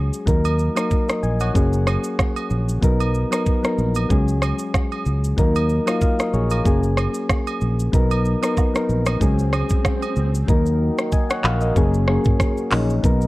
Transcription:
Already playing: F#3 G#3 C#4 G#4
0.14 shaker
0.26 D#2 F#3 A#3 D#4 A#4, kick, shaker
0.45 high agogo, shaker
0.59 shaker
0.76 F#3 A#3 D#4 A#4, cross-stick, high agogo, shaker
0.91 kick, shaker
1.09 A#4 D#5, cross-stick, shaker
1.23 A#1 D#5 G#5, shaker
1.40 C#5 F#5, high agogo, shaker
1.53 F#1 F#3 A#3 C#4 G#4, kick, shaker
1.73 shaker
1.87 cross-stick, high agogo, shaker
2.04 shaker
2.19 kick, cross-stick, low woodblock, shaker
2.36 high agogo, shaker
2.50 A#1, shaker
2.69 shaker
2.81 B1 F#3 B3 D#4 A#4, kick, shaker
3.00 high agogo, shaker
3.14 shaker
3.31 F#3 B3 D#4 A#4, cross-stick, high agogo, shaker
3.46 kick, shaker
3.63 F#3 B3 D#4 A#4, cross-stick, shaker
3.78 A#1, shaker
3.95 high agogo, shaker
4.09 C#2 F#3 G#3 C#4 G#4, kick, shaker
4.28 shaker
4.42 cross-stick, high agogo, shaker
4.59 shaker
4.74 kick, cross-stick, low woodblock, shaker
4.92 high agogo, shaker
5.06 C#2, shaker
5.24 shaker
5.37 D#2 F#3 A#3 D#4 A#4, kick, swell, shaker
5.56 high agogo, shaker
5.70 shaker
5.86 F#3 A#3 D#4 F4, cross-stick, high agogo, shaker
6.01 A#4 F5, kick, shaker
6.19 A#4 D#5, cross-stick, shaker
6.34 A#1 G#4 C#5, shaker
6.50 F4 A#4, high agogo, shaker
6.64 F#1 F#3 A#3 C#4 G#4, kick, shaker
6.84 shaker
6.97 cross-stick, high agogo, shaker
7.14 shaker
7.29 kick, cross-stick, low woodblock, shaker
7.47 high agogo, shaker
7.61 A#1, shaker
7.79 shaker
7.92 B1 F#3 B3 D#4 A#4, kick, shaker
8.11 high agogo, shaker
8.25 shaker
8.42 F#3 B3 D#4 A#4, cross-stick, high agogo, shaker
8.57 kick, low woodblock, shaker
8.73 F#3 B3 D#4 A#4, cross-stick, shaker
8.89 A#1, shaker
9.06 cross-stick, high agogo, shaker
9.20 C#2 F#3 G#3 C#4 G#4, kick, shaker
9.39 shaker
9.53 cross-stick, high agogo, shaker
9.69 kick, shaker
9.85 kick, cross-stick, low woodblock, shaker
10.02 high agogo, shaker
10.16 C#2, shaker
10.35 shaker
10.47 D#2 D#3 F#3 A#3 D#4 F#4 A#4, kick, shaker
10.66 shaker
10.98 cross-stick, shaker
11.12 D#5 G#5, kick, shaker
11.30 C#5 F#5, cross-stick, shaker
11.44 A#1 A#4 F5, clap, shaker
11.61 A#4 D#5, shaker
11.75 F#1 F#3 A#3 C#4 G#4, kick, shaker
11.94 shaker
12.07 F#3 A#3 C#4 G#4, cross-stick
12.25 kick, mid tom, shaker
12.40 kick, cross-stick, shaker
12.58 shaker
12.71 A#1 F#3 A#3 C#4 D#4, clap, open hi-hat
12.90 shaker
13.03 B1 F#3 B3 D#4 A#4, kick, shaker
13.21 shaker

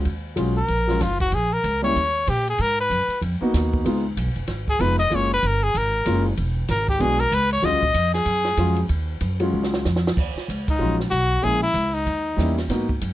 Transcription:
0.05 D#2, kick, ride
0.36 B1 F#3 G#3 C#4 F4, kick, hi-hat pedal, ride
0.57 A#4
0.68 A#1, kick, ride
0.87 F#3 G#3 C#4 F4, snare
1.01 F#1 F4, kick, snare, hi-hat pedal, ride
1.20 F#4, kick, ride
1.32 A#1 G#4, kick, ride
1.53 A#4
1.64 C#2, kick, hi-hat pedal, ride
1.82 G3 A#3 C#4 E4 C#5, ride
1.96 D#2, kick, ride
2.27 A#2 G4, kick, hi-hat pedal, ride
2.48 G#4, ride
2.58 G#2 A#4, kick, ride
2.80 B4
2.90 F#2, kick, hi-hat pedal, ride
3.08 muted upright bass stroke, ride
3.22 F2, kick, ride
3.41 A#3 B3 D#4 F#4, muted upright bass stroke
3.54 D#2, kick, snare, hi-hat pedal, ride
3.74 kick
3.85 C#2 G#3 B3 D#4 F4, kick, ride
4.17 B1, kick, hi-hat pedal, ride
4.25 G#1
4.36 F1, ride
4.47 G#1, kick, snare, ride
4.68 G#4, kick
4.79 F1 G#3 B3 D#4 F4 B4, kick, hi-hat pedal, ride
4.99 D#5, ride
5.10 F#1 G#3 A#3 C#4 F4, kick, ride
5.15 C#5
5.33 B4
5.43 G1, kick, hi-hat pedal, ride
5.47 A#4
5.63 G#4
5.74 G#1 A#4, kick, ride
6.05 F#1 G#3 A#3 C#4 F4, kick, hi-hat pedal, ride
6.37 E1, kick, ride
6.68 G#1 A#4, kick, snare, hi-hat pedal, ride
6.88 G4, kick
6.99 B1 G#3 B3 D4 F#4 G#4, kick, ride
7.20 A#4, ride
7.31 C#2 B4, kick, hi-hat pedal, ride
7.51 C#5, ride
7.62 D#2 F#3 G#3 C#4 F4 D#5, kick, snare, ride
7.72 C#2
7.83 A#1, kick
7.94 F2, kick, hi-hat pedal, ride
8.14 G#4, snare, ride
8.26 F#2, kick, ride
8.45 snare
8.57 F2 F#3 G#3 C#4 F4, kick, hi-hat pedal, ride
8.76 ride
8.89 D#2, kick, ride
9.21 F#2, kick, hi-hat pedal, ride
9.40 F#3 G#3 C#4 F4, ride
9.53 C#2
9.64 snare
9.74 snare
9.85 F2, snare, hi-hat pedal
9.96 snare
10.07 snare
10.17 D#2, kick, crash
10.35 muted upright bass stroke, snare
10.48 C#2, kick, hi-hat pedal, ride
10.68 D#4, kick, ride
10.79 A#1 F#3 G#3 C#4 F4
11.00 snare
11.11 B1 F#4, kick, hi-hat pedal, ride
11.42 A#1 G#3 A#3 C#4 E4 G#4, kick, ride
11.62 E4
11.74 C#2, kick, hi-hat pedal, ride
11.94 D#4, ride
12.06 D#2, kick, ride
12.37 E2 G3 A#3 C#4 E4, kick, hi-hat pedal, ride
12.58 snare, ride
12.69 G#2 A#3 B3 D#4 F#4, kick, snare, ride
12.89 kick
13.01 F#2, kick, hi-hat pedal, ride

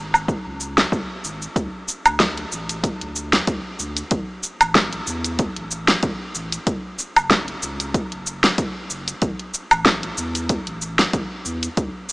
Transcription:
Already playing: G#1
0.14 cabasa, low woodblock
0.28 kick, cabasa
0.46 C#2
0.61 cabasa
0.78 snare, cabasa
0.92 C#2, kick, cabasa
1.24 G#1, cabasa
1.42 cabasa
1.56 D2, kick, closed hi-hat, cabasa
1.88 cabasa
2.06 D2, closed hi-hat, cabasa, low woodblock
2.20 kick, snare, closed hi-hat, cabasa
2.38 closed hi-hat
2.52 A1, cabasa
2.69 closed hi-hat, cabasa
2.84 kick, closed hi-hat, cabasa
3.01 D2, closed hi-hat
3.16 cabasa
3.33 snare, closed hi-hat, cabasa
3.47 D2, kick, closed hi-hat, cabasa
3.79 D2, cabasa
3.97 closed hi-hat, cabasa
4.11 A1, kick, closed hi-hat, cabasa
4.43 cabasa
4.61 A1, closed hi-hat, cabasa, low woodblock
4.75 kick, snare, closed hi-hat, cabasa
4.93 closed hi-hat
5.07 E2, cabasa
5.24 closed hi-hat, cabasa
5.39 kick, closed hi-hat, cabasa
5.56 A1, closed hi-hat
5.71 cabasa
5.88 snare, closed hi-hat, cabasa
6.03 A1, kick, closed hi-hat, cabasa
6.35 A1, cabasa
6.52 closed hi-hat, cabasa
6.67 F#1, kick, closed hi-hat, cabasa
6.99 cabasa
7.16 F#1, closed hi-hat, cabasa, low woodblock
7.31 kick, snare, closed hi-hat, cabasa
7.48 closed hi-hat
7.62 C#2, cabasa
7.80 closed hi-hat, cabasa
7.94 kick, closed hi-hat, cabasa
8.12 F#1, closed hi-hat
8.27 cabasa
8.44 snare, closed hi-hat, cabasa
8.58 F#1, kick, closed hi-hat, cabasa
8.90 F#1, cabasa
9.08 closed hi-hat, cabasa
9.22 A1, kick, closed hi-hat, cabasa
9.39 closed hi-hat
9.54 cabasa
9.71 A1, closed hi-hat, cabasa, low woodblock
9.86 kick, snare, closed hi-hat, cabasa
10.03 closed hi-hat
10.17 E2, cabasa
10.35 closed hi-hat, cabasa
10.49 kick, closed hi-hat, cabasa
10.67 A1, closed hi-hat
10.82 cabasa
10.99 snare, closed hi-hat, cabasa
11.13 A1, kick, closed hi-hat, cabasa
11.45 E2, cabasa
11.63 closed hi-hat, cabasa
11.77 D2, kick, closed hi-hat, cabasa
12.09 cabasa

